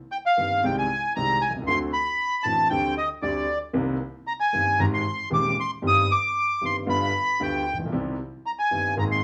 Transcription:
0.12 0.17 G5 medium
0.26 0.65 F5 medium
0.37 0.59 G1 medium
0.37 0.59 G2 medium
0.37 0.59 D#3 soft
0.37 0.59 A#3 soft
0.37 0.59 C4 soft
0.37 0.59 G4 soft
0.63 0.85 C2 medium
0.63 0.85 C3 medium
0.63 0.85 D#3 medium
0.63 0.85 G#3 medium
0.63 0.85 C4 medium
0.63 0.85 G4 medium
0.63 0.76 G5 medium
0.78 1.14 G#5 medium
1.16 1.38 C2 medium
1.16 1.38 C3 medium
1.16 1.38 D#3 medium
1.16 1.38 G#3 medium
1.16 1.38 C4 medium
1.16 1.38 G4 medium
1.16 1.42 A#5 medium
1.41 1.53 G#5 medium
1.50 1.55 B1 medium
1.56 1.61 C2 medium
1.62 1.68 C#2 medium
1.67 1.89 D2 medium
1.67 1.89 D3 medium
1.67 1.89 A3 medium
1.67 1.89 C4 medium
1.67 1.90 F#4 medium
1.67 1.79 C6 loud
1.93 2.47 B5 medium
2.43 2.67 A1 soft
2.43 2.67 A2 soft
2.43 2.67 D3 soft
2.43 2.67 A3 soft
2.43 2.67 C4 soft
2.43 2.67 F#4 soft
2.43 2.68 A5 medium
2.70 2.93 D2 medium
2.70 2.93 D3 medium
2.70 2.93 G3 medium
2.70 2.93 C4 medium
2.70 2.93 G4 medium
2.70 2.95 G5 medium
2.98 3.09 D#5 medium
3.22 3.44 D2 medium
3.22 3.44 D3 medium
3.22 3.44 G3 medium
3.22 3.44 C4 medium
3.22 3.45 G4 medium
3.22 3.59 D5 medium
3.73 3.96 C2 medium
3.73 3.96 C3 medium
3.73 3.96 D#3 medium
3.73 3.96 A#3 medium
3.73 3.96 C4 medium
3.73 3.96 G4 medium
4.27 4.33 A#5 medium
4.40 4.80 G#5 medium
4.53 4.75 G1 medium
4.53 4.75 G2 medium
4.53 4.74 D#3 soft
4.53 4.75 A#3 soft
4.53 4.75 C4 soft
4.53 4.75 G4 medium
4.79 5.01 G#1 medium
4.79 5.01 G#2 medium
4.79 5.01 D#3 medium
4.79 5.00 G#3 medium
4.79 5.01 C4 medium
4.79 5.01 G4 medium
4.79 4.86 A#5 medium
4.94 5.29 C6 medium
5.30 5.52 D#1 medium
5.30 5.52 D#2 medium
5.30 5.52 D#3 medium
5.30 5.52 G#3 medium
5.30 5.52 C4 medium
5.30 5.52 G4 medium
5.30 5.56 D6 medium
5.60 5.71 C6 medium
5.82 6.04 G1 medium
5.82 6.04 G2 medium
5.82 6.04 D#3 medium
5.82 6.05 G3 medium
5.82 6.05 C4 medium
5.82 6.05 G4 medium
5.87 6.12 D#6 loud
6.12 6.64 D6 medium
6.61 6.83 G1 soft
6.61 6.83 G2 soft
6.61 6.83 D#3 soft
6.61 6.83 G3 soft
6.61 6.83 C4 soft
6.61 6.84 G4 soft
6.66 6.76 C6 medium
6.86 7.09 G1 medium
6.86 7.09 G2 medium
6.86 7.09 D3 medium
6.86 7.09 G3 medium
6.86 7.09 B3 medium
6.86 7.09 F4 medium
6.86 7.43 B5 medium
7.40 7.62 D2 medium
7.40 7.62 D3 medium
7.40 7.62 G3 medium
7.40 7.62 B3 medium
7.40 7.62 F4 medium
7.40 7.78 G5 medium
7.73 7.79 A1 soft
7.79 7.86 A#1 medium
7.85 7.92 B1 medium
7.92 8.14 C2 medium
7.92 8.14 C3 medium
7.92 8.14 D#3 medium
7.92 8.14 G3 medium
7.92 8.15 C4 medium
7.92 8.14 G4 medium
8.46 8.52 A#5 medium
8.59 8.95 G#5 medium
8.71 8.93 G1 soft
8.71 8.93 G2 soft
8.71 8.93 D#3 soft
8.71 8.93 G3 soft
8.71 8.93 C4 soft
8.71 8.93 G4 soft
8.97 9.19 G#1 medium
8.97 9.19 G#2 medium
8.97 9.19 D#3 medium
8.97 9.19 A#3 medium
8.97 9.19 C4 medium
8.97 9.19 G#4 medium
8.97 9.04 A#5 medium
9.12 9.24 C6 medium

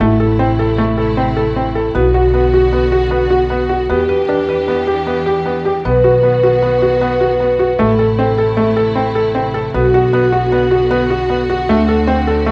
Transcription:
0.00 1.91 A1 medium
0.00 1.93 C3 medium
0.00 1.93 A3 medium
0.00 0.11 A3 medium
0.00 1.93 E4 medium
0.00 2.01 E4 medium
0.00 0.15 F#5 medium
0.00 0.28 A5 soft
0.20 0.30 A4 medium
0.39 0.49 C4 medium
0.59 0.69 A4 medium
0.78 0.88 A3 medium
0.98 1.08 A4 medium
1.17 1.27 C4 medium
1.36 1.47 A4 medium
1.56 1.66 C4 medium
1.75 1.85 A4 medium
1.95 3.86 B1 medium
1.95 3.89 D3 medium
1.95 2.05 B3 medium
1.95 3.89 B3 medium
1.95 3.96 F#4 loud
1.95 3.89 F#4 medium
2.14 2.24 F#4 medium
2.34 2.44 B3 medium
2.54 2.64 F#4 medium
2.73 2.83 B3 medium
2.92 3.02 F#4 medium
3.11 3.21 B3 medium
3.30 3.41 F#4 medium
3.50 3.60 B3 medium
3.69 3.80 F#4 medium
3.90 5.81 E2 medium
3.90 5.83 E3 medium
3.90 4.00 B3 medium
3.90 5.84 D4 medium
3.90 5.62 G4 loud
3.90 5.84 G4 medium
4.09 4.19 B4 medium
4.29 4.39 D4 medium
4.29 4.93 B4 medium
4.49 4.59 B4 medium
4.68 4.78 B3 medium
4.87 4.97 G4 medium
5.06 5.17 B3 medium
5.26 5.36 G4 medium
5.45 5.56 B3 medium
5.65 5.75 G4 medium
5.85 7.76 B1 medium
5.85 7.78 D#3 medium
5.85 5.95 B3 medium
5.85 7.78 B3 medium
5.85 7.78 F#4 medium
5.85 7.76 B4 loud
6.04 6.14 F#4 medium
6.23 6.33 B3 medium
6.43 6.54 F#4 medium
6.62 6.73 B3 medium
6.82 6.92 F#4 medium
7.01 7.12 B3 medium
7.21 7.31 F#4 medium
7.40 7.50 B3 medium
7.59 7.70 F#4 medium
7.79 9.71 A1 medium
7.79 9.73 C3 medium
7.79 7.89 A3 medium
7.79 9.73 A3 medium
7.79 9.73 E4 medium
7.79 9.80 A4 loud
7.99 8.09 A4 medium
8.19 8.29 C4 medium
8.38 8.48 A4 medium
8.57 8.67 A3 medium
8.77 8.87 A4 medium
8.96 9.06 C4 medium
9.15 9.26 A4 medium
9.35 9.45 C4 medium
9.54 9.64 A4 medium
9.74 11.65 B1 medium
9.74 11.67 D3 medium
9.74 11.67 B3 medium
9.74 9.84 B3 medium
9.74 12.52 F#4 medium
9.74 11.65 F#4 medium
9.94 10.04 F#4 medium
10.13 10.23 B3 medium
10.32 10.43 F#4 medium
10.52 10.62 B3 medium
10.71 10.81 F#4 medium
10.90 11.01 B3 medium
11.10 11.20 F#4 medium
11.30 11.40 B3 medium
11.49 11.59 F#4 medium
11.69 12.52 D2 medium
11.69 12.52 D3 medium
11.69 11.79 A3 medium
11.69 12.52 C4 medium
11.69 12.52 D4 medium
11.88 11.98 A4 medium
12.07 12.17 C4 medium
12.27 12.37 A4 medium
12.46 12.52 A3 medium

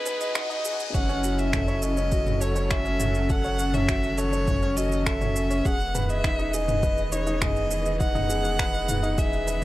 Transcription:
0.00 0.92 E1 medium
0.00 0.90 E3 medium
0.00 0.90 B3 medium
0.00 0.35 D#4 loud
0.00 0.65 G#4 medium
0.00 0.90 G#4 medium
0.00 0.06 B4 medium
0.00 0.35 B4 loud
0.00 0.20 D#5 medium
0.00 riser medium
0.00 swell medium
0.06 0.20 B4 medium
0.06 shaker medium
0.20 0.35 D#5 medium
0.20 shaker soft
0.35 0.48 D#4 medium
0.35 0.96 D#5 medium
0.35 finger snap medium
0.35 kick loud
0.35 shaker soft
0.50 0.64 D#4 loud
0.50 shaker soft
0.65 0.73 G#4 medium
0.65 shaker medium
0.80 shaker soft
0.94 5.62 F#1 medium
0.94 5.61 F#3 medium
0.94 1.08 C#4 medium
0.94 5.61 C#4 medium
0.94 3.27 E4 medium
0.94 5.61 A4 medium
0.94 1.32 F#5 medium
0.94 kick loud
0.94 shaker soft
1.09 1.23 C#4 loud
1.09 shaker soft
1.24 1.32 F#4 medium
1.24 shaker medium
1.32 1.40 F#5 medium
1.39 1.84 E5 medium
1.39 shaker soft
1.53 1.67 A4 medium
1.53 finger snap medium
1.53 kick medium
1.53 mid tom medium
1.53 shaker soft
1.68 1.82 C#5 medium
1.68 shaker soft
1.82 1.96 C#4 medium
1.82 2.43 D#5 loud
1.82 shaker medium
1.97 2.11 C#4 medium
1.97 shaker soft
2.12 2.20 F#4 medium
2.12 kick loud
2.12 shaker soft
2.27 mid tom medium
2.27 shaker soft
2.41 2.55 A4 medium
2.41 2.72 C#5 medium
2.41 shaker medium
2.56 2.70 C#5 medium
2.56 shaker soft
2.70 2.83 C#4 medium
2.70 3.32 E5 loud
2.70 finger snap loud
2.70 kick loud
2.70 shaker soft
2.85 2.99 C#4 loud
2.85 shaker soft
3.00 3.08 F#4 medium
3.00 mid tom medium
3.00 shaker medium
3.15 shaker soft
3.30 5.63 D#3 medium
3.30 3.44 A4 medium
3.30 3.76 F#5 loud
3.30 kick loud
3.30 shaker soft
3.44 3.58 C#5 medium
3.44 shaker soft
3.59 3.72 C#4 medium
3.59 shaker medium
3.74 3.88 C#4 loud
3.74 4.20 E5 loud
3.74 mid tom medium
3.74 shaker soft
3.88 3.97 F#4 medium
3.88 finger snap medium
3.88 kick loud
3.88 shaker soft
4.03 shaker soft
4.18 4.32 A4 medium
4.18 4.78 C#5 loud
4.18 shaker medium
4.33 4.47 C#5 medium
4.33 shaker soft
4.48 4.61 C#4 medium
4.48 kick loud
4.48 mid tom medium
4.48 shaker soft
4.62 4.76 C#4 loud
4.62 shaker soft
4.77 4.85 F#4 medium
4.77 5.08 D#5 medium
4.77 shaker medium
4.92 shaker soft
5.06 5.20 A4 medium
5.06 5.67 E5 medium
5.06 finger snap medium
5.06 kick loud
5.06 shaker soft
5.21 5.35 C#5 medium
5.21 mid tom medium
5.21 shaker soft
5.36 5.49 C#4 medium
5.36 shaker medium
5.50 5.64 C#4 medium
5.50 shaker soft
5.65 9.64 E1 medium
5.65 9.64 D#3 medium
5.65 9.64 E3 medium
5.65 9.64 B3 medium
5.65 5.74 G#4 medium
5.65 9.64 G#4 medium
5.65 6.02 F#5 loud
5.65 kick loud
5.65 shaker soft
5.80 shaker soft
5.95 6.09 B4 medium
5.95 mid tom medium
5.95 shaker medium
6.02 6.11 F#5 medium
6.09 6.23 D#5 medium
6.09 6.55 E5 loud
6.09 shaker soft
6.24 6.37 D#4 medium
6.24 finger snap medium
6.24 kick loud
6.24 shaker soft
6.39 6.53 D#4 loud
6.39 shaker soft
6.54 6.62 G#4 medium
6.54 7.14 D#5 medium
6.54 shaker medium
6.68 mid tom medium
6.68 shaker soft
6.83 6.97 B4 medium
6.83 kick loud
6.83 shaker soft
6.98 7.11 D#5 medium
6.98 shaker soft
7.12 7.25 D#4 medium
7.12 7.43 C#5 medium
7.12 shaker medium
7.27 7.41 D#4 loud
7.27 shaker soft
7.41 7.50 G#4 medium
7.41 8.00 D#5 loud
7.41 finger snap medium
7.41 kick loud
7.41 mid tom medium
7.41 shaker soft
7.56 shaker soft
7.71 7.85 B4 medium
7.71 shaker medium
7.86 8.00 D#5 medium
7.86 shaker soft
8.00 8.14 D#4 medium
8.00 9.20 F#5 loud
8.00 kick loud
8.00 shaker soft
8.15 8.29 D#4 loud
8.15 mid tom medium
8.15 shaker soft
8.29 8.38 G#4 medium
8.29 shaker medium
8.45 shaker soft
8.59 8.73 B4 medium
8.59 finger snap medium
8.59 kick loud
8.59 shaker soft
8.74 8.88 D#5 medium
8.74 shaker soft
8.88 9.02 D#4 medium
8.88 mid tom medium
8.88 shaker medium
9.03 9.17 D#4 loud
9.03 shaker soft
9.18 9.26 G#4 medium
9.18 9.64 E5 medium
9.18 kick loud
9.18 shaker soft
9.33 shaker soft
9.47 9.61 B4 medium
9.47 shaker medium

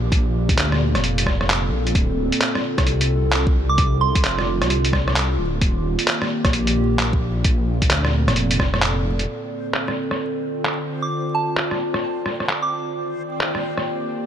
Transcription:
0.00 0.11 A#1 medium
0.00 0.12 D#3 medium
0.00 1.95 A#3 medium
0.00 0.80 F4 medium
0.00 0.87 G4 medium
0.00 5.61 D5 medium
0.12 0.56 A#1 medium
0.12 1.95 A#2 medium
0.12 kick loud
0.12 closed hi-hat medium
0.49 6.36 C4 medium
0.49 kick loud
0.49 closed hi-hat medium
0.57 0.96 D2 medium
0.57 clap loud
0.57 closed hi-hat medium
0.72 cross-stick soft
0.95 1.71 F1 medium
0.95 6.36 A4 medium
0.95 cross-stick medium
0.95 closed hi-hat soft
1.04 closed hi-hat medium
1.18 closed hi-hat medium
1.26 kick medium
1.26 cross-stick soft
1.41 cross-stick soft
1.50 clap loud
1.50 closed hi-hat medium
1.71 1.93 A#1 medium
1.87 closed hi-hat soft
1.95 2.30 D1 medium
1.95 5.62 D3 medium
1.95 kick loud
1.95 closed hi-hat medium
2.14 8.19 F4 medium
2.32 closed hi-hat medium
2.41 clap loud
2.41 closed hi-hat soft
2.55 cross-stick soft
2.78 4.23 C2 medium
2.78 kick loud
2.78 cross-stick medium
2.78 closed hi-hat soft
2.87 closed hi-hat soft
3.01 closed hi-hat soft
3.32 clap loud
3.32 closed hi-hat medium
3.47 kick loud
3.69 3.93 D6 medium
3.78 kick loud
3.78 closed hi-hat soft
4.01 4.38 C6 medium
4.15 kick loud
4.15 closed hi-hat medium
4.24 4.63 F1 medium
4.24 clap loud
4.24 closed hi-hat medium
4.39 cross-stick medium
4.62 5.38 C2 medium
4.62 cross-stick medium
4.62 closed hi-hat soft
4.70 closed hi-hat medium
4.85 closed hi-hat medium
4.93 kick medium
4.93 cross-stick medium
5.08 cross-stick medium
5.16 clap loud
5.16 closed hi-hat medium
5.39 5.60 D1 medium
5.61 5.97 D#1 loud
5.61 7.45 D#3 medium
5.61 kick loud
5.61 closed hi-hat soft
5.69 9.28 A#3 medium
5.96 8.19 G4 medium
5.96 closed hi-hat medium
6.07 clap loud
6.07 closed hi-hat medium
6.22 14.26 D5 medium
6.22 cross-stick medium
6.44 7.43 A#1 medium
6.44 kick loud
6.44 cross-stick medium
6.44 closed hi-hat soft
6.53 closed hi-hat medium
6.67 closed hi-hat medium
6.99 clap loud
6.99 closed hi-hat medium
7.13 kick loud
7.44 7.89 A#1 medium
7.44 9.28 A#2 medium
7.44 kick loud
7.44 closed hi-hat medium
7.61 13.69 C4 medium
7.82 kick loud
7.82 closed hi-hat medium
7.90 8.29 D2 medium
7.90 13.69 A4 medium
7.90 clap loud
7.90 closed hi-hat medium
8.05 cross-stick medium
8.27 9.04 F1 medium
8.27 cross-stick medium
8.27 closed hi-hat soft
8.36 closed hi-hat medium
8.51 closed hi-hat medium
8.59 kick medium
8.59 cross-stick medium
8.74 cross-stick medium
8.82 clap loud
8.82 closed hi-hat medium
9.04 9.26 F1 loud
9.19 closed hi-hat soft
9.27 12.95 D3 medium
9.27 14.26 C4 medium
9.27 14.26 C5 medium
9.48 14.26 F4 medium
9.74 clap medium
9.88 cross-stick soft
10.11 cross-stick medium
10.65 clap loud
11.02 11.26 D6 medium
11.35 11.59 A5 medium
11.57 clap medium
11.71 cross-stick soft
11.94 cross-stick medium
12.26 cross-stick soft
12.40 cross-stick soft
12.49 clap loud
12.62 12.94 D6 medium
12.95 14.26 D#3 medium
13.16 14.26 A#3 medium
13.41 14.26 G4 medium
13.41 clap loud
13.55 cross-stick soft
13.77 cross-stick medium

